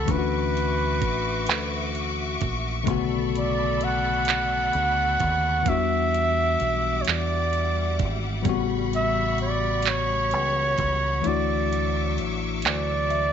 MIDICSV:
0, 0, Header, 1, 6, 480
1, 0, Start_track
1, 0, Tempo, 930233
1, 41, Time_signature, 6, 3, 24, 8
1, 6877, End_track
2, 0, Start_track
2, 0, Title_t, "String section"
2, 0, Program_c, 0, 48
2, 0, Note_on_c, 0, 85, 82
2, 43, Note_on_c, 0, 76, 73
2, 44, Note_on_c, 0, 66, 74
2, 44, Note_on_c, 0, 86, 82
2, 1468, Note_off_c, 0, 66, 0
2, 1468, Note_off_c, 0, 76, 0
2, 1468, Note_off_c, 0, 86, 0
2, 1483, Note_on_c, 0, 83, 76
2, 1484, Note_on_c, 0, 69, 70
2, 1485, Note_on_c, 0, 74, 72
2, 2899, Note_off_c, 0, 85, 0
2, 2908, Note_off_c, 0, 69, 0
2, 2908, Note_off_c, 0, 83, 0
2, 2909, Note_off_c, 0, 74, 0
2, 2922, Note_on_c, 0, 78, 63
2, 2923, Note_on_c, 0, 76, 67
2, 2923, Note_on_c, 0, 86, 84
2, 2924, Note_on_c, 0, 55, 79
2, 4347, Note_off_c, 0, 76, 0
2, 4347, Note_off_c, 0, 86, 0
2, 4358, Note_on_c, 0, 83, 73
2, 4359, Note_on_c, 0, 85, 83
2, 5781, Note_off_c, 0, 78, 0
2, 5782, Note_off_c, 0, 55, 0
2, 5785, Note_off_c, 0, 83, 0
2, 5786, Note_off_c, 0, 85, 0
2, 5798, Note_on_c, 0, 85, 70
2, 5800, Note_on_c, 0, 76, 68
2, 5800, Note_on_c, 0, 86, 75
2, 5801, Note_on_c, 0, 54, 76
2, 6877, Note_off_c, 0, 54, 0
2, 6877, Note_off_c, 0, 76, 0
2, 6877, Note_off_c, 0, 85, 0
2, 6877, Note_off_c, 0, 86, 0
2, 6877, End_track
3, 0, Start_track
3, 0, Title_t, "Flugelhorn"
3, 0, Program_c, 1, 56
3, 0, Note_on_c, 1, 69, 92
3, 56, Note_on_c, 1, 71, 89
3, 64, Note_off_c, 1, 69, 0
3, 1008, Note_off_c, 1, 71, 0
3, 1744, Note_on_c, 1, 74, 90
3, 1979, Note_on_c, 1, 78, 110
3, 1987, Note_off_c, 1, 74, 0
3, 2934, Note_on_c, 1, 76, 114
3, 2942, Note_off_c, 1, 78, 0
3, 3620, Note_on_c, 1, 73, 52
3, 3628, Note_off_c, 1, 76, 0
3, 3655, Note_on_c, 1, 74, 93
3, 3663, Note_off_c, 1, 73, 0
3, 4188, Note_off_c, 1, 74, 0
3, 4623, Note_on_c, 1, 76, 112
3, 4836, Note_off_c, 1, 76, 0
3, 4861, Note_on_c, 1, 74, 93
3, 5099, Note_on_c, 1, 73, 112
3, 5107, Note_off_c, 1, 74, 0
3, 5815, Note_on_c, 1, 74, 93
3, 5823, Note_off_c, 1, 73, 0
3, 6348, Note_off_c, 1, 74, 0
3, 6535, Note_on_c, 1, 74, 115
3, 6877, Note_off_c, 1, 74, 0
3, 6877, End_track
4, 0, Start_track
4, 0, Title_t, "Tine electric piano"
4, 0, Program_c, 2, 4
4, 0, Control_c, 2, 64, 127
4, 28, Note_on_c, 2, 52, 63
4, 37, Note_on_c, 2, 57, 53
4, 44, Note_on_c, 2, 61, 57
4, 48, Control_c, 2, 64, 0
4, 53, Note_on_c, 2, 62, 49
4, 61, Note_on_c, 2, 65, 48
4, 85, Note_off_c, 2, 65, 0
4, 96, Note_on_c, 2, 66, 70
4, 149, Control_c, 2, 64, 127
4, 1454, Note_off_c, 2, 52, 0
4, 1458, Note_off_c, 2, 57, 0
4, 1462, Note_off_c, 2, 61, 0
4, 1465, Note_on_c, 2, 50, 74
4, 1467, Note_off_c, 2, 62, 0
4, 1474, Note_on_c, 2, 57, 67
4, 1482, Note_on_c, 2, 59, 67
4, 1488, Note_off_c, 2, 66, 0
4, 1489, Control_c, 2, 64, 0
4, 1491, Note_on_c, 2, 49, 60
4, 1499, Note_on_c, 2, 66, 78
4, 1575, Control_c, 2, 64, 127
4, 2892, Note_off_c, 2, 50, 0
4, 2897, Note_off_c, 2, 57, 0
4, 2901, Note_off_c, 2, 59, 0
4, 2905, Note_off_c, 2, 49, 0
4, 2905, Note_on_c, 2, 52, 67
4, 2909, Note_off_c, 2, 66, 0
4, 2913, Note_on_c, 2, 54, 44
4, 2922, Note_on_c, 2, 59, 60
4, 2928, Control_c, 2, 64, 0
4, 2931, Note_on_c, 2, 62, 53
4, 2940, Note_on_c, 2, 66, 75
4, 2948, Note_on_c, 2, 55, 55
4, 2950, Note_off_c, 2, 54, 0
4, 3018, Control_c, 2, 64, 127
4, 4332, Note_off_c, 2, 52, 0
4, 4341, Note_off_c, 2, 59, 0
4, 4345, Note_off_c, 2, 62, 0
4, 4347, Note_on_c, 2, 52, 66
4, 4350, Note_off_c, 2, 55, 0
4, 4350, Note_off_c, 2, 66, 0
4, 4356, Note_on_c, 2, 55, 68
4, 4365, Note_on_c, 2, 59, 65
4, 4367, Control_c, 2, 64, 0
4, 4373, Note_on_c, 2, 60, 58
4, 4382, Note_on_c, 2, 66, 84
4, 4400, Note_off_c, 2, 60, 0
4, 4407, Note_on_c, 2, 49, 73
4, 4448, Control_c, 2, 64, 127
4, 5773, Note_off_c, 2, 52, 0
4, 5778, Note_off_c, 2, 55, 0
4, 5782, Note_off_c, 2, 59, 0
4, 5788, Note_on_c, 2, 52, 66
4, 5791, Note_off_c, 2, 66, 0
4, 5797, Note_on_c, 2, 57, 59
4, 5803, Note_off_c, 2, 49, 0
4, 5804, Note_on_c, 2, 64, 56
4, 5807, Control_c, 2, 64, 0
4, 5813, Note_on_c, 2, 62, 50
4, 5822, Note_on_c, 2, 66, 70
4, 5889, Control_c, 2, 64, 127
4, 6743, Note_off_c, 2, 64, 0
4, 6748, Note_off_c, 2, 62, 0
4, 6752, Note_off_c, 2, 66, 0
4, 6763, Note_on_c, 2, 76, 66
4, 6876, Note_off_c, 2, 76, 0
4, 6877, Note_off_c, 2, 52, 0
4, 6877, Note_off_c, 2, 57, 0
4, 6877, End_track
5, 0, Start_track
5, 0, Title_t, "Fingered electric bass"
5, 0, Program_c, 3, 33
5, 44, Note_on_c, 3, 38, 91
5, 529, Note_off_c, 3, 38, 0
5, 529, Note_on_c, 3, 33, 84
5, 768, Note_off_c, 3, 33, 0
5, 768, Note_on_c, 3, 38, 80
5, 1224, Note_off_c, 3, 38, 0
5, 1251, Note_on_c, 3, 34, 80
5, 1465, Note_off_c, 3, 34, 0
5, 1485, Note_on_c, 3, 35, 99
5, 2422, Note_off_c, 3, 35, 0
5, 2450, Note_on_c, 3, 38, 79
5, 2665, Note_off_c, 3, 38, 0
5, 2690, Note_on_c, 3, 39, 86
5, 2905, Note_off_c, 3, 39, 0
5, 2924, Note_on_c, 3, 40, 89
5, 3382, Note_off_c, 3, 40, 0
5, 3410, Note_on_c, 3, 35, 83
5, 3625, Note_off_c, 3, 35, 0
5, 3651, Note_on_c, 3, 40, 80
5, 4132, Note_on_c, 3, 32, 84
5, 4139, Note_off_c, 3, 40, 0
5, 4346, Note_off_c, 3, 32, 0
5, 4364, Note_on_c, 3, 33, 102
5, 5333, Note_off_c, 3, 33, 0
5, 5333, Note_on_c, 3, 37, 75
5, 5546, Note_off_c, 3, 37, 0
5, 5570, Note_on_c, 3, 37, 82
5, 5785, Note_off_c, 3, 37, 0
5, 5811, Note_on_c, 3, 38, 97
5, 6291, Note_off_c, 3, 38, 0
5, 6291, Note_on_c, 3, 33, 80
5, 6530, Note_off_c, 3, 33, 0
5, 6530, Note_on_c, 3, 38, 74
5, 6877, Note_off_c, 3, 38, 0
5, 6877, End_track
6, 0, Start_track
6, 0, Title_t, "Drums"
6, 41, Note_on_c, 9, 36, 99
6, 41, Note_on_c, 9, 42, 68
6, 93, Note_off_c, 9, 36, 0
6, 93, Note_off_c, 9, 42, 0
6, 293, Note_on_c, 9, 42, 54
6, 345, Note_off_c, 9, 42, 0
6, 524, Note_on_c, 9, 42, 49
6, 525, Note_on_c, 9, 36, 86
6, 576, Note_off_c, 9, 36, 0
6, 576, Note_off_c, 9, 42, 0
6, 756, Note_on_c, 9, 42, 77
6, 776, Note_on_c, 9, 39, 125
6, 808, Note_off_c, 9, 42, 0
6, 828, Note_off_c, 9, 39, 0
6, 1006, Note_on_c, 9, 42, 47
6, 1058, Note_off_c, 9, 42, 0
6, 1242, Note_on_c, 9, 42, 51
6, 1246, Note_on_c, 9, 36, 88
6, 1293, Note_off_c, 9, 42, 0
6, 1298, Note_off_c, 9, 36, 0
6, 1481, Note_on_c, 9, 36, 115
6, 1481, Note_on_c, 9, 42, 74
6, 1532, Note_off_c, 9, 36, 0
6, 1532, Note_off_c, 9, 42, 0
6, 1731, Note_on_c, 9, 42, 60
6, 1783, Note_off_c, 9, 42, 0
6, 1964, Note_on_c, 9, 42, 53
6, 2016, Note_off_c, 9, 42, 0
6, 2193, Note_on_c, 9, 42, 74
6, 2213, Note_on_c, 9, 39, 127
6, 2245, Note_off_c, 9, 42, 0
6, 2265, Note_off_c, 9, 39, 0
6, 2442, Note_on_c, 9, 42, 49
6, 2494, Note_off_c, 9, 42, 0
6, 2681, Note_on_c, 9, 42, 51
6, 2685, Note_on_c, 9, 36, 91
6, 2733, Note_off_c, 9, 42, 0
6, 2736, Note_off_c, 9, 36, 0
6, 2920, Note_on_c, 9, 36, 110
6, 2920, Note_on_c, 9, 42, 73
6, 2971, Note_off_c, 9, 42, 0
6, 2972, Note_off_c, 9, 36, 0
6, 3171, Note_on_c, 9, 42, 59
6, 3222, Note_off_c, 9, 42, 0
6, 3404, Note_on_c, 9, 42, 48
6, 3456, Note_off_c, 9, 42, 0
6, 3636, Note_on_c, 9, 42, 79
6, 3656, Note_on_c, 9, 39, 124
6, 3687, Note_off_c, 9, 42, 0
6, 3707, Note_off_c, 9, 39, 0
6, 3885, Note_on_c, 9, 42, 49
6, 3937, Note_off_c, 9, 42, 0
6, 4123, Note_on_c, 9, 42, 52
6, 4126, Note_on_c, 9, 36, 92
6, 4175, Note_off_c, 9, 42, 0
6, 4178, Note_off_c, 9, 36, 0
6, 4360, Note_on_c, 9, 42, 75
6, 4361, Note_on_c, 9, 36, 112
6, 4412, Note_off_c, 9, 36, 0
6, 4412, Note_off_c, 9, 42, 0
6, 4609, Note_on_c, 9, 42, 58
6, 4661, Note_off_c, 9, 42, 0
6, 4841, Note_on_c, 9, 42, 50
6, 4893, Note_off_c, 9, 42, 0
6, 5070, Note_on_c, 9, 42, 75
6, 5090, Note_on_c, 9, 39, 121
6, 5121, Note_off_c, 9, 42, 0
6, 5141, Note_off_c, 9, 39, 0
6, 5321, Note_on_c, 9, 42, 53
6, 5372, Note_off_c, 9, 42, 0
6, 5561, Note_on_c, 9, 42, 51
6, 5565, Note_on_c, 9, 36, 86
6, 5612, Note_off_c, 9, 42, 0
6, 5617, Note_off_c, 9, 36, 0
6, 5801, Note_on_c, 9, 42, 65
6, 5852, Note_off_c, 9, 42, 0
6, 6051, Note_on_c, 9, 42, 60
6, 6102, Note_off_c, 9, 42, 0
6, 6285, Note_on_c, 9, 42, 49
6, 6337, Note_off_c, 9, 42, 0
6, 6513, Note_on_c, 9, 42, 79
6, 6533, Note_on_c, 9, 39, 121
6, 6565, Note_off_c, 9, 42, 0
6, 6585, Note_off_c, 9, 39, 0
6, 6761, Note_on_c, 9, 42, 48
6, 6813, Note_off_c, 9, 42, 0
6, 6877, End_track
0, 0, End_of_file